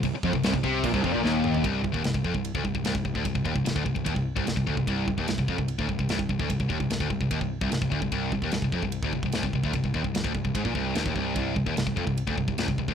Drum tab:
CC |x---x---x-------|----------------|----------------|----------------|
RD |----------------|b---b---b---b---|b---b---b---b---|b---b---b---b---|
SD |----o-------o---|----o-------o---|----o-------o---|----o-------o---|
T2 |--------------o-|----------------|----------------|----------------|
FT |---------------o|----------------|----------------|----------------|
BD |o-oo-oo-ooo-----|o-oo-ooo-ooo-ooo|oooo-ooooo-o-ooo|o-oo-ooo-ooo-ooo|

CC |----------------|----------------|----------------|----------------|
RD |b---b---b---b---|b---b---b---b---|b---b---b---b---|b---b---b---b---|
SD |----o-------o---|----o-------o---|----o-------o---|----o-------o---|
T2 |----------------|----------------|----------------|----------------|
FT |----------------|----------------|----------------|----------------|
BD |oooo-ooooo-o-ooo|o-oo-ooo-ooo-ooo|oooo-oooooo--oo-|o-oo-ooo-ooo-ooo|